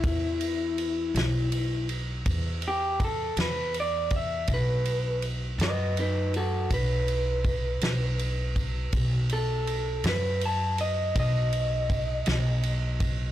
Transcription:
<<
  \new Staff \with { instrumentName = "Clean electric guitar" } { \time 12/8 \key b \phrygian \tempo 4. = 54 e'2~ e'8 r4 g'8 a'8 b'8 d''8 e''8 | b'4 r8 <b' dis''>8 <dis' b'>8 <fis' a'>8 b'2. | r8 a'4 b'8 a''8 dis''8 dis''2. | }
  \new Staff \with { instrumentName = "Upright bass" } { \clef bass \time 12/8 \key b \phrygian e,4. b,,4. e,4. e,4. | b,,4. fis,4. b,,4. b,,4. | b,,4. fis,4. b,,4. b,,4. | }
  \new DrumStaff \with { instrumentName = "Drums" } \drummode { \time 12/8 <bd cymr>8 cymr8 cymr8 <cymr sn>8 cymr8 cymr8 <bd cymr>8 cymr8 <bd cymr>8 <cymr sn>8 cymr8 <bd cymr>8 | <bd cymr>8 cymr8 cymr8 <cymr sn>8 cymr8 cymr8 <bd cymr>8 cymr8 <bd cymr>8 <cymr sn>8 cymr8 <bd cymr>8 | <bd cymr>8 cymr8 cymr8 <cymr sn>8 cymr8 cymr8 <bd cymr>8 cymr8 <bd cymr>8 <cymr sn>8 cymr8 <bd cymr>8 | }
>>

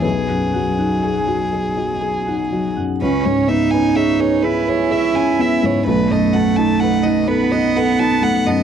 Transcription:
<<
  \new Staff \with { instrumentName = "Violin" } { \time 6/8 \key cis \minor \tempo 4. = 42 gis'2. | b'16 cis''16 e''16 gis''16 e''16 cis''16 b'16 cis''16 e''16 gis''16 e''16 cis''16 | b'16 dis''16 fis''16 a''16 fis''16 dis''16 b'16 dis''16 fis''16 a''16 fis''16 dis''16 | }
  \new Staff \with { instrumentName = "Harp" } { \time 6/8 \key cis \minor gis'16 fis''16 fis''16 fis''16 gis'16 dis''16 dis''16 dis''16 gis'16 fis''16 dis''16 fis''16 | cis'16 b'16 b'16 b'16 cis'16 gis'16 gis'16 gis'16 cis'16 b'16 gis'16 b'16 | b'16 a''16 a''16 a''16 b'16 fis''16 fis''16 fis''16 b'16 a''16 fis''16 a''16 | }
  \new Staff \with { instrumentName = "Felt piano" } { \time 6/8 \key cis \minor << { b'2~ b'8 r8 | r2. | r2. | } \\ { b,,16 fis,16 fis16 dis'16 gis'16 fis'16 gis'16 fis'16 gis'16 dis'16 fis16 fis,16 | cis,16 gis,16 b16 cis'16 gis'16 b'16 gis'16 b'16 gis'16 cis'16 b16 gis,16 | b,,16 fis,16 a16 dis'16 a'16 dis'16 a'16 dis'16 a'16 dis'16 a16 fis,16 | } >> }
  \new Staff \with { instrumentName = "Cello" } { \time 6/8 \key cis \minor fis2. | cis'8 dis'4 e'4. | a4. b4. | }
>>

